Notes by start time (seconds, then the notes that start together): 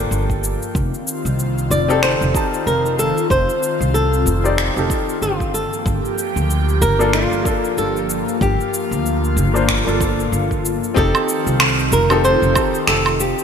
Already playing: F3 A#3 D4 F4 G4 A4
0.11 G1, shaker
0.30 kick, shaker
0.44 shaker
0.62 shaker
0.75 F1 D#3 C4 F4, kick, shaker
0.94 shaker
1.08 shaker
1.25 C2, shaker
1.39 shaker
1.58 shaker
1.71 F1 D5, shaker
1.88 C4 D#4 G4 A4, shaker
2.03 C5, finger snap, shaker
2.21 F1, shaker
2.33 C4 D#4 G4 A5, kick, shaker
2.54 shaker
2.66 F1 A#4, shaker
2.86 shaker
2.99 A4, shaker
3.18 shaker
3.30 F1 C5, kick, shaker
3.50 shaker
3.63 shaker
3.81 C2, shaker
3.94 A4, shaker
4.13 shaker
4.26 F1, shaker
4.44 C4 D#4 G4 D5, shaker
4.58 finger snap, shaker
4.74 F1 C4 D#4 G4, shaker
4.78 A4
4.90 kick, shaker
5.09 shaker
5.22 G1 F4, shaker
5.40 kick, shaker
5.54 F3 A#3 G4 A4, shaker
5.73 shaker
5.86 G1, kick, shaker
6.05 shaker
6.18 shaker
6.36 D2, shaker
6.50 shaker
6.69 shaker
6.82 G1 A#4, shaker
6.99 A#3 D4 F4 A4, shaker
7.13 F4, finger snap, shaker
7.32 G1, shaker
7.43 A#3 D4 F4 A4, kick, shaker
7.64 shaker
7.77 G1 A4, shaker
7.97 shaker
8.09 F4, shaker
8.28 shaker
8.41 G1 G4, kick, shaker
8.61 shaker
8.74 shaker
8.91 D2, shaker
9.06 shaker
9.24 shaker
9.37 G1, shaker
9.54 A#3 D4 F4 C5, shaker
9.69 finger snap, kick, shaker
9.85 G1 A#3 D4 F4 A4, shaker
10.01 kick, shaker
10.20 shaker
10.32 G1, shaker
10.51 kick, shaker
10.65 shaker
10.84 shaker
10.94 F1 D#3 C4 D#4 F4 G4 A4, kick, shaker
11.15 low woodblock, shaker
11.29 shaker
11.47 C2, shaker
11.60 finger snap, low woodblock, shaker
11.79 shaker
11.92 F1 A#4, shaker
12.09 C4 D#4 G4 A4, low woodblock, shaker
12.24 C5, shaker
12.42 F1, shaker
12.54 C4 D#4 G4 A4, kick, low woodblock, shaker
12.75 shaker
12.87 F1 A4, finger snap, shaker
13.06 low woodblock, shaker
13.20 G4, shaker
13.39 shaker